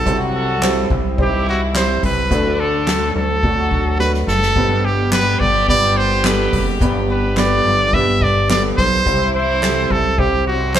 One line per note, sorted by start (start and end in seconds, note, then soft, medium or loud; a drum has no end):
0.00 0.19 A4 medium
0.06 0.86 C2 loud
0.06 0.87 C3 medium
0.06 0.89 F#3 medium
0.06 0.49 G3 medium
0.06 0.49 C4 medium
0.06 0.49 E4 medium
0.06 0.89 F#4 medium
0.06 0.49 C5 medium
0.06 kick medium
0.06 hi-hat pedal medium
0.06 ride medium
0.34 0.88 A4 medium
0.34 ride medium
0.62 1.05 C4 medium
0.62 1.05 E4 medium
0.62 1.05 G4 medium
0.62 1.06 C5 medium
0.62 snare loud
0.62 clap medium
0.62 ride medium
0.90 1.99 C2 loud
0.90 kick medium
0.90 ride medium
1.18 2.02 E3 medium
1.18 1.61 C4 medium
1.18 1.25 D#4 soft
1.18 2.01 E4 medium
1.18 1.62 G4 medium
1.18 1.46 G4 medium
1.18 1.62 C5 medium
1.18 kick loud
1.18 ride medium
1.25 1.65 E4 medium
1.47 1.61 F#4 medium
1.47 ride medium
1.74 2.17 C4 medium
1.74 2.17 E4 medium
1.74 2.18 G4 medium
1.74 2.18 C5 medium
1.74 2.02 C5 medium
1.74 snare medium
1.74 clap medium
1.74 ride medium
2.03 2.29 C2 medium
2.03 2.61 B4 medium
2.03 kick medium
2.03 open hi-hat medium
2.03 ride medium
2.31 3.11 D2 loud
2.31 3.12 D3 medium
2.31 3.14 D3 medium
2.31 2.74 A3 medium
2.31 2.74 D4 medium
2.31 3.14 D4 loud
2.31 2.74 F#4 medium
2.31 2.74 A4 medium
2.31 kick loud
2.31 hi-hat pedal medium
2.31 ride medium
2.59 3.16 A4 medium
2.59 ride medium
2.87 3.30 A3 medium
2.87 3.30 D4 medium
2.87 3.30 F#4 medium
2.87 3.31 A4 medium
2.87 snare medium
2.87 clap medium
2.87 ride medium
3.15 4.24 D2 loud
3.15 3.96 A4 medium
3.15 ride medium
3.43 4.27 F#3 medium
3.43 3.87 A3 medium
3.43 3.87 D4 medium
3.43 4.26 F#4 medium
3.43 3.87 F#4 medium
3.43 3.87 A4 medium
3.43 kick medium
3.43 ride medium
3.71 kick medium
3.71 ride medium
3.99 4.43 A3 medium
3.99 4.43 D4 medium
3.99 4.43 F#4 medium
3.99 4.12 B4 medium
3.99 4.43 B4 medium
3.99 snare medium
4.14 snare medium
4.27 4.54 F#1 loud
4.27 4.86 A4 loud
4.27 snare medium
4.42 snare medium
4.56 5.36 G1 loud
4.56 5.37 G2 medium
4.56 8.74 G3 medium
4.56 4.99 B3 medium
4.56 4.99 D4 medium
4.56 8.74 G4 medium
4.56 4.99 G4 medium
4.56 5.00 B4 medium
4.56 kick medium
4.56 crash medium
4.83 5.12 G4 medium
4.83 ride medium
5.11 5.55 B3 medium
5.11 5.55 D4 medium
5.11 5.55 G4 medium
5.11 5.55 B4 medium
5.11 5.41 B4 loud
5.11 snare loud
5.11 clap medium
5.11 ride medium
5.40 6.49 G1 medium
5.40 5.68 D5 medium
5.40 kick medium
5.40 ride medium
5.68 6.12 B3 medium
5.68 6.12 D4 medium
5.68 6.12 G4 medium
5.68 6.12 B4 medium
5.68 5.98 D5 loud
5.68 kick medium
5.68 ride medium
5.96 6.27 C5 loud
5.96 ride medium
6.24 6.68 B3 medium
6.24 6.68 D4 medium
6.24 6.68 G4 medium
6.24 6.68 A4 medium
6.24 6.67 B4 medium
6.24 snare loud
6.24 clap medium
6.24 ride medium
6.53 6.79 F#1 loud
6.53 kick medium
6.53 open hi-hat medium
6.53 ride medium
6.81 7.61 G1 loud
6.81 7.62 G2 medium
6.81 7.24 B3 medium
6.81 7.24 D4 medium
6.81 7.24 G4 medium
6.81 7.25 B4 medium
6.81 kick loud
6.81 hi-hat pedal medium
6.81 ride medium
7.08 7.39 B4 medium
7.08 ride medium
7.36 7.80 B3 medium
7.36 7.80 D4 medium
7.36 7.80 G4 medium
7.36 7.80 B4 medium
7.36 7.95 D5 loud
7.36 snare loud
7.36 clap medium
7.36 ride medium
7.65 8.74 G1 loud
7.65 ride medium
7.93 8.37 B3 medium
7.93 8.37 D4 medium
7.93 8.37 G4 medium
7.93 8.37 B4 medium
7.93 8.24 E5 loud
7.93 kick medium
7.93 ride medium
8.21 8.50 D5 loud
8.21 kick medium
8.21 ride medium
8.49 8.92 B3 medium
8.49 8.93 D4 medium
8.49 8.93 G4 medium
8.49 8.93 A4 medium
8.49 8.63 D5 loud
8.49 snare loud
8.49 clap medium
8.49 ride medium
8.78 9.04 B1 loud
8.78 9.30 C5 loud
8.78 kick medium
8.78 snare soft
8.78 open hi-hat medium
8.78 ride medium
9.06 9.86 C2 loud
9.06 9.87 C3 medium
9.06 10.16 E3 medium
9.06 9.49 C4 medium
9.06 10.16 E4 medium
9.06 9.49 E4 medium
9.06 9.49 G4 medium
9.06 9.50 C5 medium
9.06 kick medium
9.06 hi-hat pedal medium
9.06 ride medium
9.34 9.93 C5 medium
9.34 ride medium
9.62 10.05 C4 medium
9.62 10.05 E4 medium
9.62 10.05 G4 medium
9.62 10.05 A4 medium
9.62 snare loud
9.62 clap medium
9.62 ride medium
9.90 10.80 C2 loud
9.90 10.20 A4 medium
9.90 kick medium
9.90 ride medium
10.18 10.61 C4 medium
10.18 10.62 E4 medium
10.18 10.62 G4 medium
10.18 10.47 G4 loud
10.18 10.62 C5 medium
10.18 kick medium
10.18 ride medium
10.46 10.80 C3 medium
10.46 10.80 C4 medium
10.46 10.73 F#4 medium
10.46 ride medium
10.75 10.80 C4 medium
10.75 10.80 E4 medium
10.75 10.80 G4 medium
10.75 10.80 C5 medium
10.75 snare loud
10.75 clap medium
10.75 ride medium